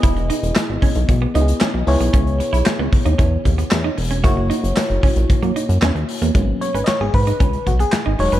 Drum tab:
HH |xxxxx-oxx-xxx-ox|xxxxx-oxx-xxx-ox|x-xxxxoxxxxxxxox|x-xxx-oxxxxxx-ox|
CP |----x-------x---|----x-------x---|----x-------x---|----x-------x---|
SD |----o-------o---|----o-------o---|----o-------o---|----o-------o---|
BD |o-----o-o-------|o-----o-o-o-----|o-----o-o-------|o-----o-o-o-----|